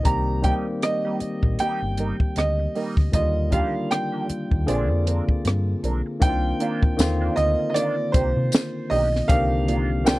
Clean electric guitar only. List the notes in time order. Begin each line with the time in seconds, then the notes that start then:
0.44 G3 A#3 D#4 G4
0.83 muted clean electric guitar stroke
1.05 G3 A#3 D#4 G4
1.44 muted clean electric guitar stroke
1.60 G3 A#3 D#4 G4
1.99 G3 A#3 D#4 A#4
2.21 muted clean electric guitar stroke
2.59 muted clean electric guitar stroke
2.75 G3 A#3 D#4 A#4
3.52 F3 A#3 D4 G4
3.90 muted clean electric guitar stroke
4.12 F3 A#3 D4 G4
4.29 muted clean electric guitar stroke
4.51 muted clean electric guitar stroke
4.67 F3 C4 D4 G#4
5.06 F3 C4 D4 A#4
5.30 muted clean electric guitar stroke
5.45 muted clean electric guitar stroke
5.83 F3 C4 D4 A#4
6.06 muted clean electric guitar stroke
6.60 D#3 A#3 D4 F4
6.99 muted clean electric guitar stroke
7.21 D#3 A#3 D4 F4
7.59 muted clean electric guitar stroke
7.75 D#3 A#3 D4 F4
7.98 muted clean electric guitar stroke
8.13 D#3 A#3 D4 G4
8.36 muted clean electric guitar stroke
8.52 muted clean electric guitar stroke
8.90 D#3 A#3 D4 G4
9.13 muted clean electric guitar stroke
9.67 D#3 A#3 D4 F4
10.05 muted clean electric guitar stroke